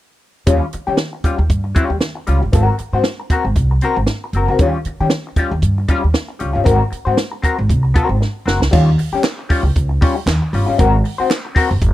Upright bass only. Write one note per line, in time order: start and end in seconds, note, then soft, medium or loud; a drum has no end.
0.47 0.59 D#2 medium
0.74 muted upright bass stroke soft
0.88 0.97 D#3 medium
1.24 muted upright bass stroke soft
1.39 1.48 D#2 medium
1.50 1.71 G2 medium
1.90 2.00 D#2 medium
2.28 2.40 C#2 medium
2.42 2.52 G1 medium
2.53 2.65 G#1 loud
2.80 muted upright bass stroke soft
2.93 3.03 G#2 medium
3.30 muted upright bass stroke soft
3.45 3.54 G#1 medium
3.56 3.78 C2 medium
3.97 4.06 G#1 medium
4.33 4.45 F#1 medium
4.48 4.58 C#2 medium
4.59 4.71 D#2 medium
4.85 muted upright bass stroke soft
5.00 5.10 D#3 medium
5.36 muted upright bass stroke soft
5.51 5.61 D#2 medium
5.62 5.84 G2 medium
6.04 6.13 D#2 medium
6.41 6.53 C#2 medium
6.55 6.65 G1 medium
6.66 6.78 G#1 loud
6.92 muted upright bass stroke soft
7.06 7.16 G#2 medium
7.44 muted upright bass stroke soft
7.59 7.68 G#1 medium
7.70 7.91 C2 medium
8.09 8.19 G#1 medium
8.46 8.58 F#1 medium
8.60 8.70 C#2 medium
8.73 8.94 D#2 loud
9.12 muted upright bass stroke soft
9.50 muted upright bass stroke soft
9.63 9.73 C#2 medium
9.76 9.97 C#2 medium
10.26 10.39 D#2 medium
10.53 10.65 G1 medium
10.79 11.00 G#1 loud
11.19 muted upright bass stroke soft
11.55 muted upright bass stroke soft
11.71 11.80 F#1 loud
11.81 11.94 F#1 medium